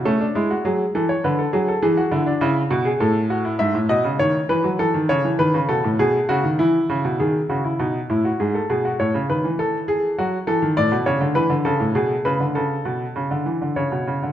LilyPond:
<<
  \new Staff \with { instrumentName = "Grand piano" } { \time 3/4 \key a \major \tempo 4 = 101 cis'16 d'16 e'16 fis'16 gis'8 a'16 cis''16 b'16 a'16 gis'16 a'16 | gis'16 fis'16 e'16 d'16 e'8 fis'16 gis'16 a'8 fis'16 e'16 | e''8 dis''8 cis''8 b'8 a'8 cis''8 | b'8 a'8 gis'8 fis'8 e'4 |
gis'8 fis'16 e'16 dis'8 e'16 fis'16 gis'16 a'16 gis'16 fis'16 | cis''8 b'8 a'8 gis'8 fis'8 a'8 | \key b \dorian d''8 cis''8 b'8 a'8 gis'8 b'8 | a'2 cis''4 | }
  \new Staff \with { instrumentName = "Grand piano" } { \clef bass \time 3/4 \key a \major a8 gis8 fis8 e8 d8 fis8 | e8 d8 cis8 b,8 a,4 | gis,16 a,16 b,16 cis16 dis8 e16 fis16 e16 dis16 cis16 e16 | dis16 cis16 b,16 a,16 b,8 cis16 dis16 e8 cis16 b,16 |
dis8 cis8 b,8 a,8 gis,8 b,8 | a,16 cis16 dis16 e4~ e16 fis8 e16 dis16 | \key b \dorian a,16 b,16 cis16 d16 e16 d16 cis16 a,16 b,8 cis16 d16 | cis8 b,8 cis16 d16 e16 d16 cis16 b,16 cis16 d16 | }
>>